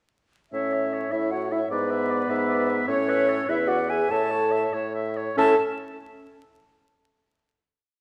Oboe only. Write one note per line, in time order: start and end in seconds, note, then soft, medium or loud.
0.54 0.75 C#5 soft
0.73 0.95 E5 soft
0.94 1.13 C#5 soft
1.12 1.32 E5 soft
1.32 1.53 C#5 soft
1.52 1.70 E5 soft
1.70 1.91 D5 soft
1.90 2.12 E5 soft
2.10 2.31 D5 soft
2.29 2.48 E5 medium
2.49 2.71 D5 soft
2.69 2.89 E5 medium
2.90 3.11 C#5 medium
3.09 3.30 E5 medium
3.29 3.49 C#5 medium
3.49 3.69 E5 medium
3.67 3.90 D5 medium
3.89 4.10 E5 soft
4.11 4.32 E5 medium
4.31 4.53 C#5 soft
4.52 4.75 E5 soft
4.73 4.94 C#5 soft
4.95 5.18 E5 soft
5.17 5.37 C#5 soft
5.38 5.55 E5 medium